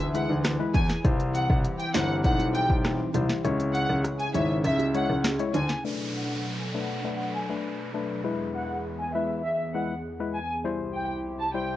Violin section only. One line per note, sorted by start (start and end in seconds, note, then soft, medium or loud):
0.14 0.28 F#5 medium
0.74 0.88 G#5 medium
1.34 1.48 F#5 medium
1.79 1.93 G5 medium
1.94 2.08 F#5 medium
2.24 2.38 F#5 medium
2.54 2.68 G5 medium
3.74 3.88 F#5 medium
4.19 4.33 G#5 medium
4.34 4.48 E5 medium
4.65 4.78 E5 loud
4.95 5.08 F#5 medium
5.54 5.68 G#5 medium
6.15 6.28 F#5 medium
6.60 6.73 G#5 medium
6.75 6.88 F#5 medium
7.05 7.18 F#5 medium
7.35 7.48 G#5 medium
8.55 8.68 F#5 medium
9.00 9.13 G#5 medium
9.15 9.28 E5 medium
9.44 9.58 E5 medium
9.74 9.88 F#5 medium
10.34 10.48 G#5 medium
10.94 11.08 G5 medium
11.39 11.53 A5 medium
11.55 11.68 G5 medium